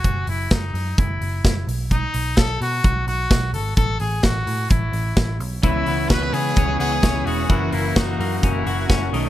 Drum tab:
HH |xoxoxoxo|xoxoxoxo|xoxoxoxo|xoxoxoxo|
SD |--o---o-|--o---o-|--o---o-|--o---o-|
BD |o-o-o-o-|o-o-o-o-|o-o-o-o-|o-o-o-o-|

HH |xoxoxoxo|
SD |--o---o-|
BD |o-o-o-o-|